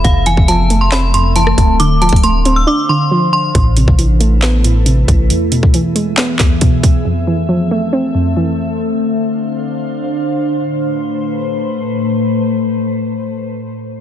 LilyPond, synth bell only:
\new Staff \with { instrumentName = "Synth bell" } { \time 4/4 \key a \minor \tempo 4 = 137 f''8 gis''8 a''8. c'''16 b''8 c'''8 a''4 | d'''8 a''8 c'''8. e'''16 d'''8 c'''4 c'''8 | r1 | r1 |
r1 | r1 | r1 | r1 | }